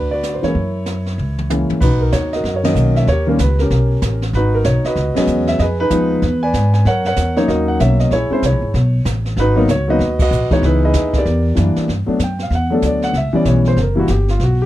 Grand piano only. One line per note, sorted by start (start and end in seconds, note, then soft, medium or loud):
0.00 0.40 D4 medium
0.00 0.12 F#4 medium
0.11 0.53 F#4 medium
0.11 0.53 B4 medium
0.11 0.35 D5 medium
0.34 0.43 C5 medium
0.42 0.53 E3 medium
0.42 0.54 G#3 medium
0.42 0.54 A#3 soft
0.42 0.54 C#4 medium
0.42 1.66 C#5 medium
0.47 1.67 E4 medium
0.47 1.67 A#4 soft
1.50 1.81 E3 soft
1.50 1.81 G#3 soft
1.50 1.82 A#3 soft
1.50 1.82 C#4 medium
1.80 2.41 D#4 medium
1.80 2.34 F#4 medium
1.80 1.99 B4 medium
2.01 2.13 A#4 medium
2.13 2.31 C#5 medium
2.33 2.66 F#4 medium
2.33 2.66 A#4 medium
2.33 2.56 D#5 medium
2.56 2.64 C#5 medium
2.63 3.04 D#3 medium
2.63 3.05 F#3 medium
2.63 3.05 A#3 medium
2.63 3.05 C#4 medium
2.63 2.97 D#5 loud
2.67 3.06 F#4 medium
2.67 3.06 A#4 medium
2.96 3.07 E5 medium
3.09 3.60 G4 medium
3.09 3.27 A#4 medium
3.09 3.26 C#5 medium
3.27 3.37 D#3 medium
3.27 3.38 G3 medium
3.27 3.38 A#3 medium
3.27 3.39 C#4 medium
3.27 3.33 A#4 medium
3.40 3.58 B4 medium
3.60 4.19 C#4 medium
3.60 4.19 G4 medium
3.60 4.18 A#4 medium
4.35 4.94 D#4 medium
4.35 4.86 F#4 medium
4.35 4.54 B4 medium
4.54 4.65 A#4 medium
4.65 4.85 C#5 medium
4.85 5.18 F#4 medium
4.85 5.18 B4 medium
4.85 5.14 D#5 medium
5.15 5.56 F#3 medium
5.15 5.57 G#3 medium
5.15 5.57 B3 medium
5.15 5.57 C#4 medium
5.15 5.49 D#5 loud
5.20 5.58 F#4 medium
5.20 5.58 B4 medium
5.48 5.60 E5 medium
5.60 5.80 G#4 medium
5.60 5.79 B4 medium
5.60 5.65 D#5 loud
5.80 5.91 D#4 medium
5.80 6.39 G#4 medium
5.80 6.42 B4 loud
5.90 6.22 F3 medium
5.90 6.23 G#3 medium
5.90 6.23 B3 medium
5.90 6.23 D#4 medium
6.43 6.83 B4 medium
6.43 6.83 D5 medium
6.43 6.72 G#5 loud
6.74 6.85 G#5 medium
6.87 7.06 A#4 medium
6.87 7.07 C#5 medium
6.87 7.05 F#5 loud
7.07 7.48 A#4 medium
7.07 7.36 C#5 medium
7.07 7.35 F#5 loud
7.36 7.77 F#3 medium
7.36 7.77 A#3 medium
7.36 7.78 C#4 medium
7.36 7.78 D#4 medium
7.36 7.49 C#5 medium
7.48 7.79 F#4 medium
7.48 8.08 A#4 medium
7.48 7.66 D#5 medium
7.68 7.79 F#5 medium
7.80 8.11 F#3 medium
7.80 8.11 A#3 medium
7.80 8.11 C#4 medium
7.80 8.12 F#4 medium
7.80 7.98 E5 medium
8.00 8.11 D#5 medium
8.13 8.30 E4 medium
8.13 8.45 G#4 medium
8.13 8.30 C#5 medium
8.30 8.41 G#3 medium
8.30 8.41 C4 medium
8.30 8.42 C#4 medium
8.30 8.42 E4 medium
8.30 8.44 C5 medium
8.46 8.74 E4 medium
8.46 8.74 G#4 medium
8.46 9.03 C#5 medium
9.39 9.56 D#4 medium
9.39 9.89 F#4 medium
9.39 9.59 B4 loud
9.55 9.67 F#3 medium
9.55 9.67 A#3 medium
9.55 9.67 B3 medium
9.55 9.68 D#4 medium
9.55 9.69 A#4 medium
9.71 9.88 C#5 medium
9.88 9.98 F#3 medium
9.88 9.99 A#3 medium
9.88 9.99 B3 medium
9.88 9.99 D#4 medium
9.88 10.20 F#4 medium
9.88 10.20 B4 medium
9.88 10.19 D#5 loud
10.22 10.61 F#4 medium
10.22 10.61 B4 medium
10.22 10.50 D#5 loud
10.50 10.91 E3 medium
10.50 10.92 G#3 medium
10.50 10.92 B3 medium
10.50 10.64 D#4 medium
10.50 10.64 C#5 medium
10.65 11.23 D#4 medium
10.65 11.23 E4 medium
10.65 10.82 B4 medium
10.84 11.24 G#4 medium
10.84 11.24 B4 medium
10.84 11.16 D#5 loud
11.17 11.75 G4 medium
11.17 11.74 A#4 medium
11.17 11.75 D5 medium
11.55 11.87 E3 medium
11.55 11.88 G3 soft
11.55 11.88 A#3 medium
11.55 11.88 D4 medium
12.06 12.18 F#3 medium
12.06 12.18 A3 medium
12.06 12.19 B3 medium
12.06 12.19 D4 medium
12.24 12.41 G5 medium
12.43 12.53 F5 medium
12.55 12.72 F#5 medium
12.70 13.12 F#3 medium
12.70 13.12 A3 medium
12.70 13.12 B3 medium
12.70 13.12 D4 medium
12.70 12.84 A4 medium
12.86 13.04 D5 medium
13.04 13.15 F#5 loud
13.17 13.35 E5 medium
13.33 13.74 E3 medium
13.33 13.74 G3 medium
13.33 13.75 B3 medium
13.33 13.75 C#4 medium
13.33 13.46 D5 medium
13.48 13.66 C#5 medium
13.68 13.78 C5 medium
13.77 13.79 A4 soft
13.82 13.99 A#4 medium
13.95 14.07 E3 medium
13.95 14.07 G3 medium
13.95 14.07 A#3 medium
13.95 14.07 E4 medium
13.99 14.09 F#4 medium
14.10 14.28 G4 medium
14.31 14.41 F4 medium
14.43 14.61 F#4 medium
14.62 14.66 G4 medium